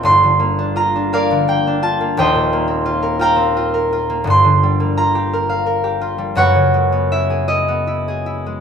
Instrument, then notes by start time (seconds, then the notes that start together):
harp
Already playing: A#3 F4 A#4 F5 G5 A#5
0.03 G1 G2 C6
0.24 D3
0.39 A#3
0.59 D4
0.76 F4 A#5
0.96 D4
1.13 A#3 A#4 D5 F5
1.31 D3
1.48 A#3 G5
1.67 D4
1.83 F4 A5
2.01 A#3
2.17 D#1 D#2 C5 D#5 G5
2.35 A#2
2.53 A#3
2.68 C4
2.86 F4
3.03 A#4
3.19 F4 F5 G5 A#5
3.36 C4
3.57 F4
3.74 A#4
3.93 F4
4.10 A#3
4.24 G1 G2
4.30 C6
4.44 D3
4.63 G3
4.80 A#3
4.97 F4 A#5
5.15 G4
5.33 A#4
5.49 F5
5.66 A#4
5.84 G4
6.01 F4
6.18 G3
6.35 F#1 F#2 B4 C#5 F#5
6.55 C#3
6.74 G#3
6.92 B3
7.12 E4 E5
7.30 G#4
7.48 E4 D#5
7.68 B3
7.87 E4
8.08 G#4
8.26 E4
8.46 G#3